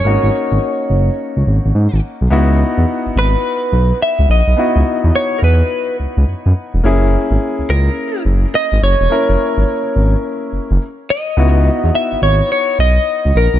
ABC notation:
X:1
M:4/4
L:1/16
Q:"Swing 16ths" 1/4=106
K:C#dor
V:1 name="Clean electric guitar"
c12- c2 z2 | z6 B6 e2 d2- | d4 c3/2 A/2 B4 z6 | z6 A4 z2 d2 c2- |
c12 z2 d2- | d4 e2 c2 c2 d4 A2 |]
V:2 name="Grand piano"
[A,CDF]16 | [B,DEF]16 | [B,DEF]16 | [A,CEG]16 |
[A,CEA]12 z4 | [B,DEF]16 |]
V:3 name="Analog synth bass" clef=bass
G,,, G,,, z G,,, z2 F,,,2 z C,, G,,, G,,, G,, G,,, z B,,, | C,,3 E,, z G,,, G,,,2 z2 B,,,2 z C,, A,,, B,,, | z C,, z E,, z2 E,,2 z2 C,, C,, F,, F,, z E,,, | F,,,3 G,,, z C,, C,,2 z2 F,,,2 z G,,, F,,, E,,, |
z F,,, z G,,, z2 G,,,2 z2 F,,, F,,, z4 | C,,3 E,, z G,,, G,,,2 z2 B,,,2 z C,, A,,, B,,, |]